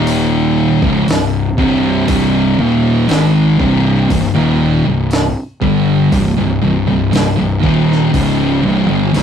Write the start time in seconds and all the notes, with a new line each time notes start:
Already playing: D#1 D#2 A#2 D#3
0.07 open hi-hat
0.82 C#1 C#2 G#2, kick
1.08 C1 C2 G2, snare, open hi-hat
1.58 C1 C2 G2 C3, kick
2.08 C1 C2 G2 C3, kick, open hi-hat
2.59 D#1 D#2 A#2 D#3
3.08 G#1 G#2 D#3 G#3, snare, open hi-hat
3.59 C1 C2 G2 C3, kick
4.10 C1 C2 G2, kick, open hi-hat
4.34 D#1 D#2 A#2 D#3
4.85 C1 C2 G2
5.11 snare, open hi-hat
5.62 G1 G2 D3 G3, kick
6.12 C1 C2 G2, kick, open hi-hat
6.37 C1 C2 G2
6.62 C1 C2 G2
6.88 C1 C2 G2
7.13 C1 C2 G2, snare, open hi-hat
7.38 C1 C2 G2
7.63 D#1 D#2 A#2 D#3, kick
7.92 snare
8.13 C#1 C#2 G#2 C#3, kick, open hi-hat
8.63 C1 C2 G2
8.88 G1 G2 D3
9.14 C1 C2 G2 C3, snare, open hi-hat